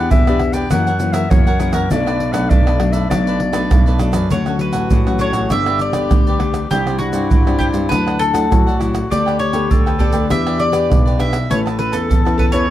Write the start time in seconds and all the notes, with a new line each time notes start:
Already playing: B3 D4 G4
0.10 E2 B2 E4 G4 B4 D5 E5, pandeiro, shaker, surdo
0.27 B3 D4 G4 B4 D5, pandeiro, tamborim, shaker
0.40 muted cavaquinho stroke, pandeiro, tamborim
0.53 G4 B4 D5 G5, pandeiro, shaker
0.71 F#2 E3 A#3 C#4 E4 A#4 C#5 F#5, pandeiro, tamborim, shaker, surdo
0.87 A#4 C#5 F#5, pandeiro, shaker
1.00 E3 A#3 C#4, muted cavaquinho stroke, pandeiro, shaker
1.13 A#4 C#5 E5 F#5, pandeiro, tamborim, shaker
1.30 F#2 C#3 E3 A#3 C#4 C#5, pandeiro, tamborim, shaker, surdo
1.47 A#4 C#5 F#5, pandeiro, shaker
1.60 E3 A#3 C#4 E4 A#4 C#5 F#5, pandeiro, tamborim, shaker
1.73 F#2 A#4 C#5 F#5, pandeiro, tamborim, shaker
1.90 B1 B2 F#3 A3 D4 A4 B4 D5, pandeiro, shaker, surdo
2.06 A4 B4 D5, pandeiro, tamborim, shaker
2.20 pandeiro
2.32 B1 F#3 A3 D4 A4 B4 D5 F#5, pandeiro, tamborim, shaker
2.50 B1 F#2 D4 A4 B4 D5, pandeiro, shaker, surdo
2.66 A4 B4 D5, pandeiro, tamborim, shaker
2.80 F#3 A3 D4, muted cavaquinho stroke, pandeiro, tamborim
2.92 A4 B4 D5 E5, pandeiro, shaker
3.09 B1 B2 F#3 A3 D4 A4 B4 D5, pandeiro, tamborim, shaker, surdo
3.27 A4 B4 D5, pandeiro, shaker
3.40 muted cavaquinho stroke, pandeiro
3.53 F#3 A3 D4 A4 B4 D5, pandeiro, tamborim, shaker
3.71 B1 F#2, pandeiro, tamborim, shaker, surdo
3.86 A4 B4 D5, pandeiro, shaker
3.99 F#3 A3 D4 A4 B4 D5, pandeiro, tamborim, shaker
4.13 F#2 A4 B4 D5, pandeiro, tamborim, shaker
4.30 D2 D3 F#3 A3 C#4 D4 F#4 A4 C#5 F#5, pandeiro, shaker, surdo
4.46 F#3 A3 C#4 A4 C#5 F#5, pandeiro, tamborim, shaker
4.59 F#3 A3 C#4 B4, muted cavaquinho stroke, pandeiro
4.73 A1 A4 C#5 F#5, pandeiro, shaker
4.90 A1 A2 D4 A4 C#5 F#5, pandeiro, shaker, surdo
5.06 F#3 A3 C#4 A4 C#5 F#5, pandeiro, tamborim, shaker
5.19 D4 A4 C#5 F#5, pandeiro, shaker
5.33 A1 A4 C#5 F#5, pandeiro, shaker
5.50 G1 G2 G3 B3 D4 G4 B4 D5 E5, pandeiro, tamborim, shaker, surdo
5.66 G4 B4 D5, pandeiro, tamborim, shaker
5.79 D5, muted cavaquinho stroke, pandeiro
5.93 G1 G4 B4 D5, pandeiro, tamborim, shaker
6.10 D2 D3 G3 B3 D4, pandeiro, tamborim, shaker, surdo
6.27 G4 B4 D5, pandeiro, shaker
6.39 G3 B3 D4 G4 B4 D5, pandeiro, tamborim
6.54 pandeiro, tamborim, shaker
6.71 C2 C3 G3 C4 D4 E4 G4 C5 D5, pandeiro, shaker, surdo
6.87 G3 C4 D4 G4 C5 D5, pandeiro, tamborim, shaker
6.99 G3 C4 D4 F#4, muted cavaquinho stroke, pandeiro
7.13 G2 G4 C5 D5, pandeiro, shaker
7.30 G2 D4 G4 C5 D5, pandeiro, shaker, surdo
7.46 G3 C4 D4 G4 C5 D5, pandeiro, tamborim, shaker
7.59 D4 G4 C5 D5, pandeiro, shaker, surdo
7.72 G2 G4 C5 D5, pandeiro, shaker
7.89 D2 D3 F#3 A3 D4 E4 A4 B4 D5 F#5, pandeiro, tamborim, shaker, surdo
8.06 A4 D5 F#5, pandeiro, tamborim, shaker
8.19 A4, muted cavaquinho stroke, pandeiro, shaker
8.33 D2 F#3 A3 E4 A4 D5 F#5, pandeiro, tamborim, shaker
8.51 A1 A2 F#3 A3 E4 F#4, pandeiro, tamborim, shaker, surdo
8.67 A4 D5 F#5, pandeiro, shaker
8.80 F#3 A3 E4 A4 D5 F#5, pandeiro, tamborim, shaker
8.95 pandeiro, tamborim, shaker
9.10 D2 D3 B3 D4 G4 A4 B4 D5 G5, pandeiro, shaker, surdo
9.26 A4 B4 G5, pandeiro, tamborim, shaker
9.39 C#5, muted cavaquinho stroke, pandeiro
9.53 D2 B3 G4 A4 B4 G5, pandeiro, shaker
9.70 D2 D3 D4 A4 B4 G5, pandeiro, shaker, surdo
9.86 A4 B4 G5, pandeiro, tamborim, shaker
9.99 B3 D4 G4 A4 B4 D5 G5, pandeiro, surdo
10.13 D2 A4 B4 G5, pandeiro, shaker
10.30 E2 E3 D4 E4 G4 B4 D5 E5, pandeiro, tamborim, shaker, surdo
10.46 G4 B4 D5, pandeiro, tamborim, shaker
10.59 D5, muted cavaquinho stroke, pandeiro
10.72 E2 D4 G4 B4 D5, pandeiro, tamborim, shaker
10.90 B1 B2, pandeiro, tamborim, shaker, surdo
11.05 G4 B4 D5, pandeiro, shaker
11.18 D4 E4 G4 B4 D5 E5, pandeiro, tamborim
11.33 pandeiro, tamborim, shaker
11.50 A1 A3 C#4 E4 A4 B4 C#5 A5, pandeiro, shaker, surdo
11.66 B4 C#5 A5, pandeiro, tamborim, shaker
11.79 C#4 E4 B4, muted cavaquinho stroke, pandeiro
11.92 E2 A4 B4 C#5 A5, pandeiro, shaker
12.09 E2 E3 A4 B4 C#5 A5, pandeiro, shaker, surdo
12.25 C#4 E4 B4 C#5 A5, pandeiro, tamborim, shaker
12.38 A4 B4 C#5 A5, pandeiro, surdo
12.52 E2 C#4 E4 B4 C#5 A5, pandeiro, shaker